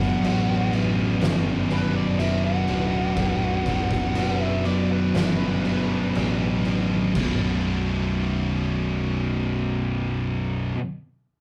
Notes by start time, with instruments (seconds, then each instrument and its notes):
Already playing: picked electric bass F#1, distorted electric guitar B1 F#2 B2, tonewheel organ F#3 B3 D4, lead electric guitar F#5
0.01 snare
0.21 picked electric bass A1, distorted electric guitar B1 F#2 B2, crash
0.70 distorted electric guitar B1 F#2 B2, crash
1.19 picked electric bass G1, distorted electric guitar B1 F#2 B2, snare, crash
1.69 distorted electric guitar B1 F#2 B2, lead electric guitar B4, crash
1.96 lead electric guitar D5
2.17 picked electric bass F#1, distorted electric guitar B1 F#2 B2, lead electric guitar E5, crash
2.44 lead electric guitar F#5
2.67 picked electric bass D1, distorted electric guitar B1 F#2 B2, crash
3.16 picked electric bass B0, distorted electric guitar B1 F#2 B2, kick, crash
3.66 distorted electric guitar B1 F#2 B2, kick, crash
3.91 kick, snare
4.15 picked electric bass F#1, distorted electric guitar B1 F#2 B2, crash
4.41 lead electric guitar E5
4.65 distorted electric guitar B1 F#2 B2, lead electric guitar D5, crash
4.92 lead electric guitar B4
5.14 picked electric bass G1, distorted electric guitar B1 F#2 B2, lead electric guitar B4, snare, crash
5.64 distorted electric guitar B1 F#2 B2, crash
6.15 picked electric bass A1, distorted electric guitar B1 F#2 B2, crash
6.65 distorted electric guitar B1 F#2 B2, crash
7.14 picked electric bass B0, distorted electric guitar B1 F#2 B2 F#3 D4, tonewheel organ B2 F#3, kick, crash